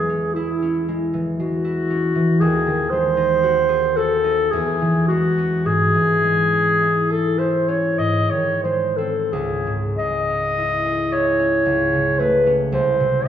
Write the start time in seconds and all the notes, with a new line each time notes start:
Already playing: E2 E3 G#3 G#4
0.09 C#4
0.35 E4
0.62 C#4
0.88 G#3
1.13 E3
1.39 G#3 F#4
1.64 E4
1.90 C#4
2.15 E3
2.40 D#2 G#4
2.67 D#3
2.90 G#3 C5
3.17 D#4
3.43 F#4
3.69 G#4
3.97 F#4 A4
4.24 D#4
4.51 E2 G#4
4.81 E3
5.08 G#3 F#4
5.38 C#4
5.66 G#2 G#4
5.94 E3
6.24 G#3
6.53 C#4
6.82 E4
7.10 G#4 A4
7.39 E4 C5
7.68 C#4 C#5
7.98 G#2 D#5
8.30 D#3 C#5
8.63 G#3 C5
8.97 C4 A4
9.33 C#2 G#4
9.67 G#2
9.98 G#3 D#5
10.30 C#4
10.58 E4
10.85 G#4
11.13 E4 C#5
11.39 C#4
11.65 C#2
11.93 C#3
12.19 A3 B4
12.47 C#4
12.72 C2 C5
13.00 C3